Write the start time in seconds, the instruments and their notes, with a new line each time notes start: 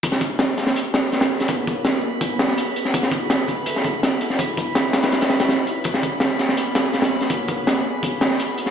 0.03 string machine A#3 B3 C#4 F#4 G#4, synth texture B5, kick, closed hi-hat
0.12 snare
0.21 kick, closed hi-hat
0.39 snare, closed hi-hat
0.58 snare, closed hi-hat
0.67 snare
0.76 closed hi-hat
0.94 snare, closed hi-hat
1.12 snare, closed hi-hat
1.21 snare, closed hi-hat
1.40 snare, closed hi-hat
1.48 kick, closed hi-hat
1.67 kick, closed hi-hat
1.85 snare, closed hi-hat
2.21 kick, closed hi-hat
2.39 snare, closed hi-hat
2.48 snare
2.58 closed hi-hat
2.76 closed hi-hat
2.85 snare
2.94 string machine E4 A4, kick, closed hi-hat
3.03 snare
3.12 kick, closed hi-hat
3.30 snare, closed hi-hat
3.48 kick, closed hi-hat
3.66 closed hi-hat
3.76 snare
3.84 kick, closed hi-hat
4.03 snare, closed hi-hat
4.21 closed hi-hat
4.30 snare
4.39 string machine C#4 D#4 B4, kick, closed hi-hat
4.57 kick, closed hi-hat
4.75 snare, closed hi-hat
4.93 snare, closed hi-hat
5.03 snare, closed hi-hat
5.12 snare, closed hi-hat
5.21 snare, closed hi-hat
5.30 snare, closed hi-hat
5.40 snare, closed hi-hat
5.49 snare, closed hi-hat
5.67 closed hi-hat
5.84 string machine A#3 B3 F#4 G#4, kick, closed hi-hat
5.94 snare
6.03 kick, closed hi-hat
6.20 snare, closed hi-hat
6.39 snare, closed hi-hat
6.49 snare
6.57 closed hi-hat
6.75 snare, closed hi-hat
6.93 snare, closed hi-hat
7.02 snare, closed hi-hat
7.21 snare, closed hi-hat
7.30 kick, closed hi-hat
7.48 kick, closed hi-hat
7.67 snare, closed hi-hat
8.03 kick, closed hi-hat
8.21 snare, closed hi-hat
8.31 snare
8.40 closed hi-hat
8.58 closed hi-hat
8.66 snare